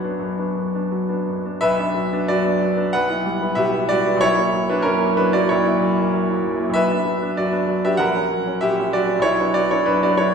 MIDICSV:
0, 0, Header, 1, 2, 480
1, 0, Start_track
1, 0, Key_signature, 2, "minor"
1, 0, Tempo, 701754
1, 1092, Time_signature, 4, 2, 24, 8
1, 1092, Tempo, 666667
1, 2532, Tempo, 629591
1, 5892, Tempo, 616016
1, 7716, End_track
2, 0, Start_track
2, 0, Title_t, "Grand piano"
2, 0, Program_c, 0, 0
2, 0, Control_c, 0, 64, 127
2, 0, Note_on_c, 0, 42, 43
2, 0, Note_on_c, 0, 54, 45
2, 0, Note_on_c, 0, 59, 41
2, 0, Note_on_c, 0, 62, 48
2, 0, Note_on_c, 0, 71, 48
2, 0, Note_on_c, 0, 73, 79
2, 0, Note_on_c, 0, 78, 48
2, 0, Note_on_c, 0, 83, 64
2, 0, Note_on_c, 0, 85, 100
2, 25, Note_off_c, 0, 59, 0
2, 25, Note_on_c, 0, 59, 42
2, 27, Note_off_c, 0, 62, 0
2, 27, Note_on_c, 0, 62, 45
2, 89, Note_off_c, 0, 54, 0
2, 126, Note_off_c, 0, 59, 0
2, 128, Note_off_c, 0, 62, 0
2, 131, Note_off_c, 0, 42, 0
2, 131, Note_on_c, 0, 42, 49
2, 246, Note_off_c, 0, 42, 0
2, 261, Note_on_c, 0, 62, 42
2, 263, Note_on_c, 0, 59, 40
2, 363, Note_off_c, 0, 62, 0
2, 364, Note_off_c, 0, 59, 0
2, 387, Note_on_c, 0, 42, 43
2, 501, Note_on_c, 0, 59, 38
2, 513, Note_on_c, 0, 62, 43
2, 568, Note_off_c, 0, 42, 0
2, 602, Note_off_c, 0, 59, 0
2, 609, Note_off_c, 0, 62, 0
2, 625, Note_on_c, 0, 54, 43
2, 743, Note_on_c, 0, 59, 38
2, 745, Note_on_c, 0, 62, 43
2, 810, Note_off_c, 0, 54, 0
2, 832, Note_off_c, 0, 71, 0
2, 834, Note_off_c, 0, 78, 0
2, 847, Note_off_c, 0, 59, 0
2, 848, Note_off_c, 0, 62, 0
2, 858, Note_off_c, 0, 83, 0
2, 870, Note_on_c, 0, 42, 44
2, 993, Note_on_c, 0, 59, 36
2, 996, Note_on_c, 0, 62, 41
2, 1055, Note_off_c, 0, 42, 0
2, 1091, Note_off_c, 0, 59, 0
2, 1092, Note_off_c, 0, 62, 0
2, 1100, Note_on_c, 0, 76, 116
2, 1105, Control_c, 0, 64, 0
2, 1106, Note_on_c, 0, 71, 98
2, 1110, Note_on_c, 0, 35, 77
2, 1112, Note_off_c, 0, 85, 0
2, 1113, Note_off_c, 0, 73, 0
2, 1221, Note_off_c, 0, 35, 0
2, 1229, Note_on_c, 0, 59, 52
2, 1233, Note_on_c, 0, 62, 56
2, 1250, Control_c, 0, 64, 127
2, 1333, Note_off_c, 0, 59, 0
2, 1336, Note_off_c, 0, 62, 0
2, 1340, Note_on_c, 0, 54, 56
2, 1473, Note_on_c, 0, 59, 51
2, 1477, Note_on_c, 0, 62, 58
2, 1533, Note_off_c, 0, 54, 0
2, 1558, Note_off_c, 0, 71, 0
2, 1575, Note_off_c, 0, 59, 0
2, 1577, Note_off_c, 0, 62, 0
2, 1583, Note_off_c, 0, 76, 0
2, 1587, Note_on_c, 0, 74, 93
2, 1591, Note_on_c, 0, 42, 55
2, 1594, Note_on_c, 0, 66, 71
2, 1698, Note_on_c, 0, 59, 54
2, 1701, Note_on_c, 0, 62, 55
2, 1776, Note_off_c, 0, 42, 0
2, 1805, Note_off_c, 0, 59, 0
2, 1807, Note_off_c, 0, 62, 0
2, 1822, Note_on_c, 0, 54, 54
2, 1936, Note_on_c, 0, 59, 57
2, 1938, Note_on_c, 0, 62, 59
2, 2010, Note_off_c, 0, 54, 0
2, 2034, Note_off_c, 0, 66, 0
2, 2044, Note_off_c, 0, 59, 0
2, 2045, Note_off_c, 0, 62, 0
2, 2052, Note_on_c, 0, 78, 105
2, 2060, Note_off_c, 0, 74, 0
2, 2062, Note_on_c, 0, 35, 65
2, 2062, Note_on_c, 0, 71, 94
2, 2068, Control_c, 0, 64, 0
2, 2160, Note_on_c, 0, 59, 49
2, 2170, Note_on_c, 0, 64, 54
2, 2176, Note_off_c, 0, 35, 0
2, 2176, Control_c, 0, 64, 127
2, 2276, Note_off_c, 0, 59, 0
2, 2281, Note_off_c, 0, 64, 0
2, 2288, Note_on_c, 0, 55, 53
2, 2403, Note_on_c, 0, 59, 51
2, 2407, Note_on_c, 0, 64, 54
2, 2482, Note_off_c, 0, 55, 0
2, 2501, Note_on_c, 0, 76, 101
2, 2507, Note_off_c, 0, 71, 0
2, 2507, Note_on_c, 0, 47, 58
2, 2514, Note_off_c, 0, 59, 0
2, 2516, Note_off_c, 0, 64, 0
2, 2517, Note_on_c, 0, 67, 72
2, 2531, Note_off_c, 0, 78, 0
2, 2641, Note_on_c, 0, 59, 46
2, 2646, Note_on_c, 0, 64, 52
2, 2714, Note_off_c, 0, 47, 0
2, 2750, Note_off_c, 0, 67, 0
2, 2753, Note_on_c, 0, 74, 104
2, 2756, Note_off_c, 0, 59, 0
2, 2759, Note_off_c, 0, 64, 0
2, 2759, Note_off_c, 0, 76, 0
2, 2769, Note_on_c, 0, 55, 55
2, 2770, Note_on_c, 0, 66, 79
2, 2890, Note_on_c, 0, 64, 54
2, 2891, Note_on_c, 0, 59, 49
2, 2964, Note_off_c, 0, 55, 0
2, 2966, Note_on_c, 0, 35, 73
2, 2993, Note_off_c, 0, 64, 0
2, 2995, Note_off_c, 0, 66, 0
2, 2997, Note_on_c, 0, 73, 113
2, 3001, Note_off_c, 0, 59, 0
2, 3004, Note_off_c, 0, 74, 0
2, 3004, Note_on_c, 0, 64, 90
2, 3029, Control_c, 0, 64, 0
2, 3105, Note_off_c, 0, 64, 0
2, 3106, Note_off_c, 0, 35, 0
2, 3106, Note_on_c, 0, 58, 52
2, 3117, Note_on_c, 0, 64, 56
2, 3135, Control_c, 0, 64, 127
2, 3229, Note_off_c, 0, 58, 0
2, 3235, Note_off_c, 0, 64, 0
2, 3241, Note_on_c, 0, 54, 53
2, 3369, Note_on_c, 0, 58, 53
2, 3369, Note_on_c, 0, 71, 89
2, 3370, Note_on_c, 0, 64, 56
2, 3371, Note_off_c, 0, 73, 0
2, 3377, Note_on_c, 0, 62, 69
2, 3445, Note_off_c, 0, 54, 0
2, 3468, Note_on_c, 0, 70, 95
2, 3483, Note_on_c, 0, 42, 54
2, 3484, Note_off_c, 0, 58, 0
2, 3485, Note_off_c, 0, 64, 0
2, 3485, Note_on_c, 0, 61, 66
2, 3492, Note_off_c, 0, 62, 0
2, 3497, Note_off_c, 0, 71, 0
2, 3603, Note_on_c, 0, 58, 52
2, 3605, Note_on_c, 0, 64, 52
2, 3686, Note_off_c, 0, 42, 0
2, 3718, Note_off_c, 0, 61, 0
2, 3720, Note_off_c, 0, 58, 0
2, 3721, Note_off_c, 0, 64, 0
2, 3726, Note_off_c, 0, 70, 0
2, 3732, Note_on_c, 0, 71, 96
2, 3733, Note_on_c, 0, 62, 71
2, 3740, Note_on_c, 0, 54, 55
2, 3848, Note_on_c, 0, 58, 55
2, 3848, Note_on_c, 0, 64, 54
2, 3849, Note_off_c, 0, 62, 0
2, 3855, Note_on_c, 0, 74, 92
2, 3857, Note_off_c, 0, 71, 0
2, 3857, Note_on_c, 0, 66, 74
2, 3933, Note_off_c, 0, 54, 0
2, 3962, Note_off_c, 0, 64, 0
2, 3963, Note_off_c, 0, 58, 0
2, 3971, Note_off_c, 0, 66, 0
2, 3975, Note_on_c, 0, 73, 87
2, 3979, Note_off_c, 0, 74, 0
2, 3989, Note_on_c, 0, 64, 70
2, 3992, Note_on_c, 0, 35, 58
2, 4098, Note_off_c, 0, 64, 0
2, 4104, Note_off_c, 0, 35, 0
2, 4109, Note_on_c, 0, 64, 56
2, 4112, Note_on_c, 0, 58, 47
2, 4214, Note_off_c, 0, 64, 0
2, 4216, Note_off_c, 0, 58, 0
2, 4216, Note_on_c, 0, 42, 56
2, 4356, Note_on_c, 0, 64, 52
2, 4358, Note_on_c, 0, 58, 50
2, 4410, Note_off_c, 0, 42, 0
2, 4456, Note_off_c, 0, 64, 0
2, 4457, Note_off_c, 0, 58, 0
2, 4469, Note_on_c, 0, 54, 55
2, 4590, Note_on_c, 0, 58, 46
2, 4595, Note_on_c, 0, 64, 50
2, 4654, Note_off_c, 0, 54, 0
2, 4692, Note_off_c, 0, 58, 0
2, 4694, Note_off_c, 0, 73, 0
2, 4695, Note_off_c, 0, 64, 0
2, 4700, Note_on_c, 0, 42, 52
2, 4817, Note_on_c, 0, 64, 49
2, 4818, Note_on_c, 0, 58, 44
2, 4891, Note_on_c, 0, 35, 69
2, 4892, Note_off_c, 0, 42, 0
2, 4925, Note_on_c, 0, 76, 119
2, 4926, Note_off_c, 0, 64, 0
2, 4927, Note_off_c, 0, 58, 0
2, 4938, Note_on_c, 0, 71, 95
2, 4954, Control_c, 0, 64, 0
2, 5031, Note_off_c, 0, 35, 0
2, 5055, Note_on_c, 0, 59, 49
2, 5058, Note_on_c, 0, 62, 53
2, 5095, Control_c, 0, 64, 127
2, 5165, Note_off_c, 0, 59, 0
2, 5166, Note_off_c, 0, 62, 0
2, 5168, Note_on_c, 0, 54, 51
2, 5295, Note_on_c, 0, 59, 47
2, 5295, Note_on_c, 0, 62, 52
2, 5363, Note_off_c, 0, 54, 0
2, 5386, Note_off_c, 0, 71, 0
2, 5403, Note_off_c, 0, 59, 0
2, 5403, Note_off_c, 0, 62, 0
2, 5410, Note_off_c, 0, 76, 0
2, 5411, Note_on_c, 0, 74, 83
2, 5416, Note_on_c, 0, 42, 53
2, 5416, Note_on_c, 0, 66, 61
2, 5525, Note_on_c, 0, 59, 49
2, 5525, Note_on_c, 0, 62, 54
2, 5607, Note_off_c, 0, 42, 0
2, 5637, Note_off_c, 0, 59, 0
2, 5637, Note_off_c, 0, 62, 0
2, 5640, Note_on_c, 0, 54, 50
2, 5749, Note_off_c, 0, 66, 0
2, 5770, Note_on_c, 0, 62, 53
2, 5771, Note_on_c, 0, 59, 52
2, 5772, Note_off_c, 0, 74, 0
2, 5772, Note_on_c, 0, 76, 96
2, 5778, Note_on_c, 0, 67, 72
2, 5839, Note_off_c, 0, 54, 0
2, 5869, Note_on_c, 0, 78, 102
2, 5879, Note_off_c, 0, 62, 0
2, 5880, Note_off_c, 0, 59, 0
2, 5880, Note_on_c, 0, 34, 62
2, 5885, Note_on_c, 0, 70, 79
2, 5887, Note_off_c, 0, 67, 0
2, 5892, Note_off_c, 0, 76, 0
2, 5905, Control_c, 0, 64, 0
2, 6005, Note_off_c, 0, 34, 0
2, 6018, Note_on_c, 0, 61, 49
2, 6048, Control_c, 0, 64, 127
2, 6125, Note_off_c, 0, 61, 0
2, 6138, Note_on_c, 0, 54, 52
2, 6260, Note_on_c, 0, 61, 51
2, 6329, Note_off_c, 0, 54, 0
2, 6341, Note_off_c, 0, 70, 0
2, 6363, Note_on_c, 0, 76, 100
2, 6364, Note_off_c, 0, 78, 0
2, 6367, Note_off_c, 0, 61, 0
2, 6373, Note_on_c, 0, 46, 52
2, 6377, Note_on_c, 0, 67, 79
2, 6507, Note_on_c, 0, 61, 48
2, 6566, Note_off_c, 0, 46, 0
2, 6599, Note_off_c, 0, 67, 0
2, 6609, Note_off_c, 0, 61, 0
2, 6609, Note_off_c, 0, 76, 0
2, 6616, Note_on_c, 0, 74, 92
2, 6622, Note_on_c, 0, 54, 52
2, 6625, Note_on_c, 0, 66, 69
2, 6725, Note_on_c, 0, 61, 46
2, 6809, Note_off_c, 0, 54, 0
2, 6818, Note_on_c, 0, 35, 73
2, 6837, Note_off_c, 0, 61, 0
2, 6839, Note_on_c, 0, 73, 102
2, 6842, Note_off_c, 0, 66, 0
2, 6845, Note_on_c, 0, 64, 76
2, 6854, Note_off_c, 0, 74, 0
2, 6867, Control_c, 0, 64, 0
2, 6951, Note_off_c, 0, 35, 0
2, 6971, Control_c, 0, 64, 127
2, 6978, Note_on_c, 0, 59, 46
2, 6983, Note_on_c, 0, 62, 50
2, 7071, Note_off_c, 0, 64, 0
2, 7083, Note_off_c, 0, 59, 0
2, 7084, Note_off_c, 0, 73, 0
2, 7086, Note_off_c, 0, 62, 0
2, 7089, Note_on_c, 0, 74, 94
2, 7096, Note_on_c, 0, 66, 69
2, 7098, Note_on_c, 0, 54, 49
2, 7205, Note_off_c, 0, 66, 0
2, 7210, Note_off_c, 0, 74, 0
2, 7221, Note_on_c, 0, 73, 85
2, 7225, Note_on_c, 0, 59, 47
2, 7226, Note_on_c, 0, 62, 48
2, 7230, Note_on_c, 0, 64, 67
2, 7286, Note_off_c, 0, 54, 0
2, 7326, Note_off_c, 0, 59, 0
2, 7327, Note_off_c, 0, 62, 0
2, 7333, Note_off_c, 0, 64, 0
2, 7336, Note_off_c, 0, 73, 0
2, 7337, Note_on_c, 0, 71, 88
2, 7341, Note_on_c, 0, 42, 48
2, 7350, Note_on_c, 0, 62, 69
2, 7453, Note_off_c, 0, 62, 0
2, 7455, Note_off_c, 0, 71, 0
2, 7467, Note_on_c, 0, 59, 49
2, 7470, Note_on_c, 0, 62, 54
2, 7472, Note_on_c, 0, 74, 85
2, 7479, Note_on_c, 0, 66, 65
2, 7529, Note_off_c, 0, 42, 0
2, 7569, Note_off_c, 0, 59, 0
2, 7571, Note_off_c, 0, 62, 0
2, 7579, Note_off_c, 0, 66, 0
2, 7583, Note_off_c, 0, 74, 0
2, 7583, Note_on_c, 0, 73, 89
2, 7591, Note_on_c, 0, 54, 50
2, 7596, Note_on_c, 0, 64, 70
2, 7716, Note_off_c, 0, 54, 0
2, 7716, Note_off_c, 0, 64, 0
2, 7716, Note_off_c, 0, 73, 0
2, 7716, End_track
0, 0, End_of_file